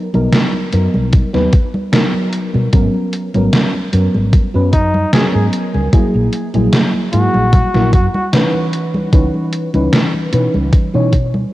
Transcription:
0.14 0.27 B1 medium
0.14 0.68 F#3 medium
0.14 0.68 B3 medium
0.14 0.69 D#4 medium
0.14 0.69 A#4 loud
0.14 closed hi-hat soft
0.14 high conga medium
0.33 snare loud
0.33 closed hi-hat medium
0.33 high conga soft
0.54 high conga soft
0.72 0.86 F#2 medium
0.72 1.29 F#3 medium
0.72 1.29 B3 medium
0.72 1.29 D#4 medium
0.72 1.29 A#4 medium
0.72 closed hi-hat medium
0.94 1.20 B1 medium
0.94 high conga medium
1.13 kick loud
1.13 closed hi-hat medium
1.13 high conga soft
1.33 1.47 D#2 medium
1.33 1.52 F#3 medium
1.33 1.52 B3 medium
1.33 1.53 D#4 medium
1.33 1.53 B4 loud
1.33 snare soft
1.33 high conga soft
1.53 kick loud
1.53 closed hi-hat medium
1.74 high conga medium
1.92 2.68 F#3 medium
1.92 2.69 B3 medium
1.92 2.69 D#4 medium
1.92 2.69 A#4 loud
1.92 snare loud
1.92 closed hi-hat medium
1.92 high conga soft
2.14 high conga soft
2.33 closed hi-hat medium
2.54 2.67 B2 medium
2.54 high conga medium
2.72 2.86 G#1 loud
2.72 3.29 F#3 medium
2.72 3.29 B3 medium
2.72 3.29 C#4 medium
2.72 3.30 A#4 medium
2.72 kick loud
2.72 closed hi-hat medium
2.72 high conga soft
2.94 high conga soft
3.13 closed hi-hat medium
3.34 3.47 G#1 medium
3.34 3.88 F#3 medium
3.34 3.89 B3 medium
3.34 3.89 C#4 medium
3.34 3.89 A#4 medium
3.34 closed hi-hat soft
3.34 high conga medium
3.53 snare loud
3.53 closed hi-hat medium
3.53 high conga soft
3.74 high conga soft
3.92 4.06 F#2 loud
3.92 4.49 F#3 medium
3.92 4.49 B3 medium
3.92 4.49 C#4 medium
3.92 4.50 A#4 medium
3.92 closed hi-hat medium
4.14 4.32 G#1 medium
4.14 high conga medium
4.33 kick loud
4.33 closed hi-hat medium
4.33 high conga soft
4.54 5.03 F#2 medium
4.54 4.73 F#3 medium
4.54 4.73 B3 medium
4.54 4.73 C#4 medium
4.54 4.73 B4 loud
4.54 high conga soft
4.73 5.09 D#4 loud
4.73 kick medium
4.73 closed hi-hat medium
4.94 high conga medium
5.13 5.88 F#3 medium
5.13 5.89 B3 medium
5.13 5.89 C#4 medium
5.13 5.27 G#4 medium
5.13 5.89 A#4 loud
5.13 snare loud
5.13 closed hi-hat medium
5.13 high conga soft
5.34 5.47 G#2 medium
5.34 5.46 G#4 medium
5.34 high conga soft
5.53 closed hi-hat medium
5.74 5.87 C#2 loud
5.74 high conga medium
5.92 6.49 F#3 medium
5.92 6.49 A#3 medium
5.92 6.49 E4 medium
5.92 6.50 G#4 medium
5.92 kick loud
5.92 closed hi-hat medium
5.92 high conga soft
6.14 6.27 A#1 medium
6.14 high conga soft
6.33 closed hi-hat medium
6.54 6.67 A#1 medium
6.54 7.08 F#3 medium
6.54 7.08 A#3 medium
6.54 7.09 E4 medium
6.54 7.09 G#4 loud
6.54 closed hi-hat soft
6.54 high conga medium
6.73 snare loud
6.73 closed hi-hat medium
6.73 high conga soft
6.94 high conga soft
7.13 7.26 G#2 loud
7.13 7.69 F#3 medium
7.13 7.69 A#3 medium
7.13 7.69 E4 medium
7.13 7.89 F#4 loud
7.13 7.70 G#4 medium
7.13 closed hi-hat medium
7.34 7.60 A#1 medium
7.34 high conga medium
7.53 kick loud
7.53 closed hi-hat medium
7.53 high conga soft
7.74 7.94 A#1 loud
7.74 7.93 F#3 medium
7.74 7.93 A#3 medium
7.74 7.93 E4 medium
7.74 7.93 A#4 loud
7.74 snare soft
7.74 high conga soft
7.93 8.06 F#2 loud
7.93 8.07 F#4 medium
7.93 kick loud
7.93 closed hi-hat medium
8.14 8.26 F#4 medium
8.14 high conga medium
8.33 9.08 E3 loud
8.33 9.09 C#4 medium
8.33 9.09 D#4 medium
8.33 9.09 B4 loud
8.33 snare loud
8.33 closed hi-hat medium
8.33 high conga soft
8.54 high conga soft
8.73 closed hi-hat medium
8.94 high conga medium
9.12 9.26 C#2 loud
9.12 9.69 E3 medium
9.12 9.69 C#4 medium
9.12 9.69 D#4 medium
9.12 9.70 B4 medium
9.12 kick loud
9.12 closed hi-hat medium
9.12 high conga soft
9.34 high conga soft
9.53 closed hi-hat medium
9.74 9.87 C#2 medium
9.74 10.28 E3 medium
9.74 10.29 C#4 medium
9.74 10.29 D#4 medium
9.74 10.29 B4 loud
9.74 closed hi-hat soft
9.74 high conga medium
9.93 snare loud
9.93 closed hi-hat medium
9.93 high conga soft
10.14 high conga soft
10.32 10.46 B2 loud
10.32 10.89 E3 medium
10.32 10.89 C#4 medium
10.32 10.89 D#4 medium
10.32 10.90 B4 medium
10.32 closed hi-hat medium
10.54 10.72 C#2 medium
10.54 high conga medium
10.73 muted fretless electric bass stroke soft
10.73 kick loud
10.73 closed hi-hat medium
10.73 high conga soft
10.94 11.43 B2 medium
10.94 11.12 E3 medium
10.94 11.13 C#4 medium
10.94 11.13 D#4 medium
10.94 11.13 C#5 loud
10.94 high conga soft
11.13 kick medium
11.13 closed hi-hat medium
11.34 high conga medium

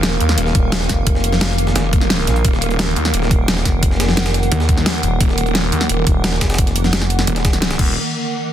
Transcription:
0.00 0.19 D#1 loud
0.00 7.75 D#3 medium
0.00 7.75 A#3 medium
0.00 7.75 A#4 medium
0.00 2.42 F5 medium
0.00 snare loud
0.00 closed hi-hat medium
0.20 0.36 D#2 loud
0.20 closed hi-hat medium
0.29 snare medium
0.38 0.54 D#1 loud
0.38 closed hi-hat medium
0.46 snare soft
0.55 0.88 D#1 loud
0.55 kick loud
0.55 closed hi-hat medium
0.72 snare loud
0.72 closed hi-hat medium
0.81 snare medium
0.89 1.74 F1 loud
0.89 kick medium
0.89 snare soft
0.89 closed hi-hat medium
1.07 kick loud
1.07 closed hi-hat medium
1.15 snare soft
1.24 closed hi-hat medium
1.33 snare soft
1.33 closed hi-hat soft
1.41 snare loud
1.41 closed hi-hat medium
1.50 snare medium
1.58 closed hi-hat medium
1.67 snare medium
1.76 2.26 F1 loud
1.76 snare loud
1.76 closed hi-hat medium
1.93 kick loud
1.93 closed hi-hat medium
2.01 snare soft
2.10 snare loud
2.10 closed hi-hat medium
2.19 snare soft
2.27 2.43 A#1 loud
2.27 snare medium
2.27 closed hi-hat medium
2.36 closed hi-hat medium
2.45 2.95 D#1 loud
2.45 7.75 F#5 medium
2.45 kick loud
2.45 closed hi-hat medium
2.53 snare soft
2.62 closed hi-hat medium
2.71 closed hi-hat soft
2.79 snare loud
2.79 closed hi-hat medium
2.96 3.12 D#2 medium
2.96 closed hi-hat medium
3.05 snare medium
3.14 3.30 D#1 medium
3.14 closed hi-hat medium
3.22 snare soft
3.31 3.64 D#1 loud
3.31 kick loud
3.31 closed hi-hat medium
3.48 snare loud
3.48 closed hi-hat medium
3.57 snare medium
3.65 4.50 F1 loud
3.65 kick medium
3.65 snare soft
3.65 closed hi-hat medium
3.83 kick loud
3.83 closed hi-hat medium
3.91 snare soft
4.00 snare loud
4.00 closed hi-hat medium
4.08 snare soft
4.17 snare loud
4.17 closed hi-hat loud
4.17 closed hi-hat medium
4.26 snare loud
4.26 closed hi-hat medium
4.34 snare soft
4.34 closed hi-hat medium
4.43 closed hi-hat medium
4.52 5.02 D#2 loud
4.52 closed hi-hat medium
4.60 snare medium
4.69 kick loud
4.69 closed hi-hat medium
4.77 snare soft
4.86 snare loud
4.86 closed hi-hat medium
4.86 open hi-hat medium
4.95 closed hi-hat soft
5.03 5.19 D#1 loud
5.03 closed hi-hat medium
5.21 5.71 D#1 loud
5.21 kick loud
5.21 closed hi-hat medium
5.29 snare soft
5.38 closed hi-hat medium
5.46 closed hi-hat soft
5.55 snare loud
5.55 closed hi-hat loud
5.55 closed hi-hat medium
5.72 5.88 D#2 loud
5.72 closed hi-hat medium
5.81 snare medium
5.89 6.05 D#1 loud
5.89 closed hi-hat medium
6.07 6.40 D#1 loud
6.07 kick loud
6.07 closed hi-hat medium
6.24 snare loud
6.24 closed hi-hat loud
6.24 closed hi-hat medium
6.33 snare medium
6.41 7.26 F1 loud
6.41 kick medium
6.41 snare loud
6.41 snare soft
6.41 closed hi-hat medium
6.50 snare medium
6.50 closed hi-hat medium
6.54 snare medium
6.54 closed hi-hat medium
6.58 kick loud
6.58 closed hi-hat loud
6.58 closed hi-hat medium
6.67 snare soft
6.67 closed hi-hat soft
6.76 closed hi-hat medium
6.84 snare soft
6.84 closed hi-hat soft
6.93 snare loud
6.93 closed hi-hat loud
6.93 closed hi-hat medium
7.02 snare medium
7.10 closed hi-hat medium
7.19 snare medium
7.27 7.79 D#1 loud
7.27 closed hi-hat loud
7.27 closed hi-hat medium
7.36 snare medium
7.36 closed hi-hat soft
7.45 kick loud
7.45 snare loud
7.45 closed hi-hat medium
7.53 snare soft
7.53 closed hi-hat soft
7.62 snare loud
7.62 closed hi-hat loud
7.62 closed hi-hat medium
7.71 snare loud
7.71 closed hi-hat medium
7.79 7.95 D#1 loud
7.79 kick loud
7.79 crash medium

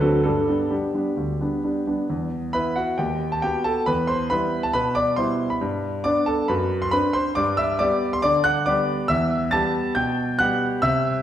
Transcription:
0.00 0.28 D2 medium
0.00 0.23 F#3 medium
0.00 0.23 C4 medium
0.00 0.23 D4 medium
0.00 0.23 F#4 medium
0.00 0.22 A4 medium
0.00 0.27 B4 medium
0.24 0.47 G2 medium
0.24 0.47 D4 medium
0.24 0.70 A4 medium
0.48 0.69 G3 soft
0.48 0.69 B3 medium
0.48 0.69 D4 soft
0.70 0.92 G3 soft
0.70 0.92 B3 soft
0.70 0.93 D4 soft
0.70 1.87 G4 medium
0.94 1.15 G3 soft
0.94 1.15 B3 soft
0.94 1.15 D4 soft
1.17 1.40 D2 medium
1.41 1.61 G3 soft
1.41 1.62 B3 soft
1.41 1.62 D4 soft
1.64 1.85 G3 soft
1.64 1.85 B3 soft
1.64 1.85 D4 soft
1.87 2.07 G3 soft
1.87 2.07 B3 soft
1.87 2.08 D4 soft
2.10 2.53 E2 medium
2.53 2.95 B3 medium
2.53 2.95 E4 medium
2.53 2.75 B4 medium
2.53 2.76 B5 loud
2.76 2.97 F#4 medium
2.76 2.98 F#5 medium
2.98 3.42 D#2 medium
2.98 3.30 G4 medium
2.98 3.31 G5 medium
3.32 3.43 A5 medium
3.42 3.83 B3 medium
3.42 3.84 F#4 medium
3.42 3.64 G4 medium
3.42 3.65 G5 medium
3.64 3.86 A4 medium
3.64 3.87 A5 loud
3.86 4.29 E2 medium
3.86 4.07 B4 medium
3.86 4.08 B5 loud
4.07 4.29 C5 medium
4.07 4.30 C6 loud
4.30 4.70 G3 medium
4.30 4.70 B3 medium
4.30 4.71 E4 medium
4.30 4.61 B4 medium
4.30 4.63 B5 loud
4.63 4.74 A5 medium
4.73 5.45 B2 medium
4.73 4.95 B4 medium
4.73 4.96 B5 loud
4.95 5.17 D5 medium
4.95 5.18 D6 loud
5.16 5.58 G3 medium
5.16 5.58 B3 medium
5.16 5.58 E4 medium
5.16 5.48 C5 medium
5.16 5.50 C6 medium
5.50 5.61 B5 medium
5.61 6.04 G2 medium
6.04 6.45 B3 medium
6.04 6.45 D4 medium
6.04 6.26 D5 medium
6.04 6.27 D6 loud
6.26 6.48 A4 medium
6.26 6.49 A5 medium
6.48 6.92 F#2 medium
6.48 6.80 B4 medium
6.48 6.82 B5 medium
6.82 6.93 C6 loud
6.91 7.32 C4 medium
6.91 7.32 D4 medium
6.91 7.13 B4 medium
6.91 7.14 B5 loud
7.13 7.35 C5 medium
7.13 7.36 C6 loud
7.35 7.79 G2 medium
7.35 7.57 D5 medium
7.35 7.58 D6 loud
7.57 7.79 E5 medium
7.57 7.79 E6 loud
7.79 8.20 G3 medium
7.79 8.20 B3 medium
7.79 8.20 G4 medium
7.79 8.10 D5 medium
7.79 8.12 D6 loud
8.13 8.24 C6 loud
8.22 8.92 D3 medium
8.22 8.44 D5 medium
8.22 8.45 D6 loud
8.44 8.65 F#5 medium
8.44 8.66 F#6 loud
8.66 9.05 G3 medium
8.66 9.05 B3 medium
8.66 9.06 G4 medium
8.66 9.06 D5 medium
8.66 9.09 D6 loud
9.08 9.51 E2 medium
9.08 9.50 E5 medium
9.08 9.52 E6 loud
9.51 9.92 G3 medium
9.51 9.92 B3 medium
9.51 9.92 G4 medium
9.51 9.93 A5 loud
9.51 9.95 A6 loud
9.95 10.66 B2 medium
9.95 10.37 G5 medium
9.95 10.39 G6 loud
10.39 10.79 G3 medium
10.39 10.79 B3 medium
10.39 10.79 G4 medium
10.39 10.80 F#5 medium
10.39 10.82 F#6 loud
10.82 11.22 C3 medium
10.82 11.22 E5 medium
10.82 11.22 E6 loud

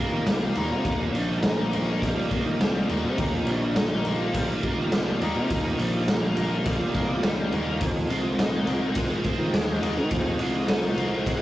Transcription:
0.00 0.38 D#2 medium
0.00 0.86 D#2 medium
0.00 1.00 A#2 medium
0.00 1.63 D#3 medium
0.00 0.27 G3 medium
0.00 1.74 A#3 medium
0.00 0.57 D#4 medium
0.00 7.78 D#4 medium
0.00 11.42 F4 medium
0.00 7.77 G4 medium
0.12 0.25 D#3 medium
0.27 0.52 C2 loud
0.27 1.15 G3 medium
0.27 snare loud
0.27 ride loud
0.38 2.87 D#2 medium
0.55 0.72 D#2 medium
0.55 1.44 D#4 medium
0.55 ride medium
0.55 low conga medium
0.70 0.83 C3 medium
0.70 high conga medium
0.85 1.15 D#2 medium
0.85 3.19 D#2 medium
0.85 kick loud
0.85 ride medium
0.85 low conga medium
1.01 3.49 A#2 medium
1.15 2.13 A#1 medium
1.15 2.03 G3 medium
1.15 ride medium
1.29 high conga medium
1.43 2.91 D#4 medium
1.43 snare loud
1.43 ride medium
1.63 2.23 D#3 medium
1.73 2.31 A#3 medium
1.73 ride medium
1.73 high conga medium
1.73 low conga medium
2.02 2.62 G3 medium
2.02 kick loud
2.02 ride medium
2.23 4.12 D#3 medium
2.31 4.07 A#3 medium
2.31 kick medium
2.31 ride medium
2.46 2.58 D#3 medium
2.61 2.85 C2 loud
2.61 3.49 G3 medium
2.61 snare loud
2.61 ride medium
2.76 snare soft
2.87 5.34 D#2 medium
2.87 3.06 D#2 loud
2.87 ride medium
2.87 low conga medium
2.92 3.78 D#4 medium
3.05 3.17 C3 loud
3.05 high conga medium
3.18 3.48 D#2 medium
3.18 5.52 D#2 medium
3.18 kick loud
3.18 ride medium
3.18 low conga medium
3.47 4.46 A#1 medium
3.47 5.95 A#2 medium
3.47 4.35 G3 medium
3.47 ride medium
3.63 high conga medium
3.76 5.23 D#4 medium
3.76 snare loud
3.76 ride medium
4.05 4.64 A#3 medium
4.05 ride medium
4.05 high conga medium
4.05 low conga medium
4.12 4.72 D#3 medium
4.34 4.93 G3 medium
4.34 kick loud
4.34 ride medium
4.63 6.09 A#3 medium
4.63 kick medium
4.63 ride medium
4.72 6.55 D#3 medium
4.78 4.90 D#3 medium
4.92 5.17 C2 loud
4.92 5.80 G3 medium
4.92 snare loud
4.92 ride medium
5.21 5.37 D#2 loud
5.21 6.09 D#4 medium
5.21 ride medium
5.21 low conga medium
5.34 7.78 D#2 medium
5.34 5.48 C3 medium
5.34 high conga medium
5.50 5.80 D#2 medium
5.50 7.81 D#2 medium
5.50 kick loud
5.50 ride medium
5.79 6.77 A#1 medium
5.79 6.65 G3 medium
5.79 ride medium
5.79 low conga medium
5.94 8.41 A#2 medium
5.94 high conga medium
6.08 7.52 D#4 medium
6.08 snare loud
6.08 ride medium
6.37 6.94 A#3 medium
6.37 ride medium
6.37 high conga medium
6.37 low conga medium
6.55 7.19 D#3 medium
6.66 7.22 G3 medium
6.66 kick loud
6.66 ride medium
6.94 7.21 C2 medium
6.94 7.82 A#3 medium
6.94 kick medium
6.94 ride medium
7.10 high conga medium
7.19 8.99 D#3 medium
7.23 7.50 C#2 medium
7.23 7.81 G3 medium
7.23 snare loud
7.23 ride medium
7.23 high conga medium
7.38 high conga medium
7.52 7.79 D#2 medium
7.52 7.84 D#4 medium
7.52 ride medium
7.52 low conga medium
7.67 low conga medium
7.79 10.24 D#2 medium
7.79 8.11 D#2 medium
7.79 9.25 F2 medium
7.79 11.42 D#4 medium
7.79 11.42 G#4 medium
7.79 kick loud
7.79 ride medium
7.79 low conga medium
8.10 9.08 C2 medium
8.10 8.96 G#3 medium
8.10 ride medium
8.25 high conga medium
8.39 10.85 A#2 medium
8.39 9.82 D#4 medium
8.39 snare loud
8.39 ride medium
8.67 9.25 C4 medium
8.67 ride medium
8.67 high conga medium
8.67 low conga medium
8.95 9.53 G#3 medium
8.95 kick loud
8.95 ride medium
8.99 9.64 D#3 medium
9.24 10.97 C4 medium
9.24 kick medium
9.24 ride medium
9.39 9.52 D#3 medium
9.54 9.79 D#2 loud
9.54 10.39 G#3 medium
9.54 snare loud
9.54 ride medium
9.64 11.42 D#3 medium
9.83 9.99 D#2 medium
9.83 10.68 D#4 medium
9.83 ride medium
9.83 low conga medium
9.97 10.10 D#3 loud
9.97 high conga medium
10.11 10.42 D#2 medium
10.11 11.42 F2 medium
10.11 kick loud
10.11 ride medium
10.11 low conga medium
10.25 11.42 D#2 medium
10.39 11.38 C2 medium
10.39 11.26 G#3 medium
10.39 ride medium
10.55 high conga medium
10.68 11.42 D#4 medium
10.68 snare loud
10.68 ride loud
10.86 11.42 A#2 medium
10.98 11.42 C4 medium
10.98 ride medium
10.98 high conga medium
10.98 low conga medium
11.26 11.42 G#3 medium
11.26 kick loud
11.26 ride medium

